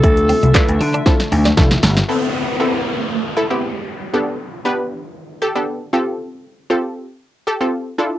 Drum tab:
HH |xxoxxxoxxxoxxxox|----------------|----------------|----------------|
SH |xxxxxxxxxxxxxxxx|----------------|----------------|----------------|
CP |----x-----------|----------------|----------------|----------------|
SD |----o---oo-ooooo|----------------|----------------|----------------|
BD |o---o---o---o---|----------------|----------------|----------------|